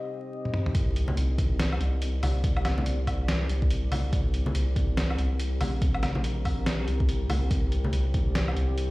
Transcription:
0.00 0.71 C4 medium
0.00 0.71 G4 medium
0.00 0.74 D#5 medium
0.45 high tom medium
0.54 mid tom medium
0.66 mid tom medium
0.75 1.16 C2 loud
0.75 8.91 C4 medium
0.75 8.91 G4 medium
0.75 4.12 D5 medium
0.75 kick loud
0.75 closed hi-hat medium
0.96 closed hi-hat medium
1.08 high conga medium
1.17 1.79 C2 medium
1.17 closed hi-hat medium
1.38 kick loud
1.38 closed hi-hat medium
1.59 snare loud
1.59 closed hi-hat medium
1.72 low woodblock medium
1.80 2.21 C2 loud
1.80 closed hi-hat medium
2.02 closed hi-hat medium
2.23 3.48 C2 loud
2.23 open hi-hat loud
2.23 high conga medium
2.23 low woodblock medium
2.44 kick loud
2.44 closed hi-hat medium
2.57 low woodblock medium
2.65 snare medium
2.65 closed hi-hat medium
2.65 low woodblock medium
2.78 high conga loud
2.86 closed hi-hat medium
3.07 kick medium
3.07 closed hi-hat medium
3.07 low woodblock medium
3.28 snare loud
3.28 closed hi-hat medium
3.49 4.11 C2 loud
3.49 closed hi-hat medium
3.62 kick loud
3.70 closed hi-hat medium
3.92 open hi-hat loud
3.92 high conga loud
3.92 low woodblock medium
4.13 4.54 C2 loud
4.13 7.50 A#4 medium
4.13 kick loud
4.13 closed hi-hat medium
4.34 closed hi-hat medium
4.46 high conga loud
4.55 5.17 C2 loud
4.55 closed hi-hat medium
4.76 kick loud
4.76 closed hi-hat medium
4.97 snare loud
4.97 closed hi-hat medium
5.10 low woodblock soft
5.18 5.59 C2 loud
5.18 closed hi-hat medium
5.39 closed hi-hat medium
5.61 6.86 A#1 loud
5.61 open hi-hat medium
5.61 high conga loud
5.61 low woodblock medium
5.82 kick loud
5.82 closed hi-hat medium
5.95 low woodblock medium
6.03 snare medium
6.03 closed hi-hat medium
6.03 high conga medium
6.03 low woodblock medium
6.15 high conga medium
6.24 closed hi-hat medium
6.45 kick medium
6.45 open hi-hat medium
6.45 low woodblock soft
6.66 snare loud
6.66 closed hi-hat medium
6.87 7.28 C2 loud
6.87 closed hi-hat medium
7.00 kick loud
7.09 closed hi-hat medium
7.30 7.49 C2 medium
7.30 open hi-hat medium
7.30 high conga medium
7.30 low woodblock medium
7.51 7.92 C2 loud
7.51 8.91 D5 medium
7.51 kick loud
7.51 closed hi-hat medium
7.72 closed hi-hat medium
7.84 high conga medium
7.93 8.55 C2 loud
7.93 closed hi-hat medium
8.14 kick loud
8.14 closed hi-hat soft
8.35 snare loud
8.35 closed hi-hat medium
8.48 low woodblock medium
8.56 8.91 C2 loud
8.56 closed hi-hat medium
8.78 closed hi-hat medium

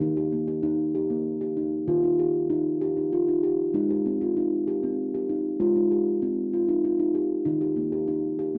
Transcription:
0.00 1.83 D#3 medium
0.00 0.17 D#4 medium
0.17 0.32 G4 medium
0.32 0.48 A#3 medium
0.48 0.63 G4 medium
0.63 0.94 D#4 medium
0.95 1.10 G4 medium
1.10 1.41 A#3 medium
1.41 1.56 G4 medium
1.57 1.88 D#4 medium
1.88 3.70 D#3 medium
1.88 2.03 F4 medium
2.03 2.19 D#4 medium
2.19 2.50 G4 medium
2.50 2.81 D#4 medium
2.81 2.96 G4 medium
2.97 3.12 D#4 medium
3.12 3.27 F4 medium
3.28 3.43 D#4 medium
3.43 3.74 G4 medium
3.74 5.56 G#3 medium
3.74 3.90 D#4 medium
3.90 4.05 G4 medium
4.06 4.21 C4 medium
4.21 4.36 F4 medium
4.37 4.67 D#4 medium
4.68 4.83 G4 medium
4.83 5.14 C4 medium
5.14 5.30 G4 medium
5.29 5.60 D#4 medium
5.60 7.43 G#3 medium
5.60 5.76 F4 medium
5.76 5.91 D#4 medium
5.92 6.22 G4 medium
6.22 6.53 C4 medium
6.54 6.69 F4 medium
6.69 6.84 D#4 medium
6.84 7.00 F4 medium
7.00 7.15 D#4 medium
7.15 7.46 G4 medium
7.45 8.58 D#3 medium
7.45 7.61 D#4 medium
7.61 7.77 G4 medium
7.76 7.92 A#3 medium
7.92 8.08 G4 medium
8.08 8.39 D#4 medium
8.39 8.55 G4 medium
8.55 8.58 A#3 medium

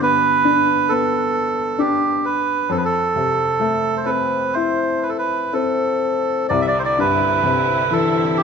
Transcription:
0.00 2.65 G2 medium
0.00 1.31 D3 soft
0.00 0.89 B3 soft
0.00 0.93 B4 medium
0.45 1.77 D4 soft
0.89 2.66 B3 soft
0.89 1.82 A4 medium
1.79 2.66 D4 soft
1.79 2.26 G4 medium
2.25 2.71 B4 medium
2.69 6.46 F2 medium
2.69 2.77 A4 medium
2.77 2.84 B4 medium
2.85 4.10 A4 medium
3.16 4.99 C3 soft
3.60 5.48 A3 soft
3.97 4.05 C5 soft
4.05 5.52 C4 soft
4.05 4.55 B4 medium
4.53 6.47 E4 soft
4.53 5.04 C5 medium
5.03 5.10 B4 medium
5.09 5.17 A4 soft
5.18 5.54 B4 medium
5.53 6.48 C4 soft
5.53 6.47 A4 medium
6.49 8.43 C2 medium
6.49 8.43 D3 medium
6.49 8.43 C4 soft
6.49 8.43 E4 medium
6.49 6.62 D5 medium
6.62 6.66 E5 soft
6.67 6.79 D5 medium
6.79 6.83 C5 medium
6.85 7.00 D5 medium
6.98 8.43 G2 soft
6.98 7.94 B4 medium
7.43 8.43 C3 soft
7.91 8.43 E3 soft
7.91 8.38 A4 medium
8.37 8.43 G4 medium

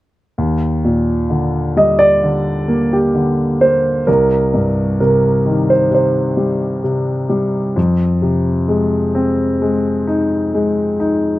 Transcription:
0.38 4.04 D#2 soft
0.84 2.65 A#2 soft
1.30 2.22 D3 soft
1.77 3.57 G3 soft
1.77 2.01 D#5 medium
1.99 2.95 D5 medium
2.23 3.13 D3 soft
2.68 3.60 A#3 soft
2.93 3.64 G4 soft
3.15 4.05 D3 soft
3.61 4.06 A#3 soft
3.61 4.04 C5 medium
4.07 7.73 C2 soft
4.07 4.99 A#4 medium
4.54 6.35 G2 soft
5.00 5.89 C3 soft
5.00 5.72 A#4 medium
5.46 7.27 D#3 soft
5.70 5.91 C5 medium
5.91 6.82 C3 soft
5.91 6.82 C5 medium
6.37 7.28 G3 soft
6.84 7.74 C3 soft
7.29 7.75 G3 soft
7.76 11.39 F2 soft
8.22 10.03 C3 soft
8.68 9.60 G#3 soft
9.15 10.96 C4 soft
9.62 10.53 G#3 soft
10.07 10.98 D#4 soft
10.54 11.39 G#3 soft
11.00 11.39 D#4 soft

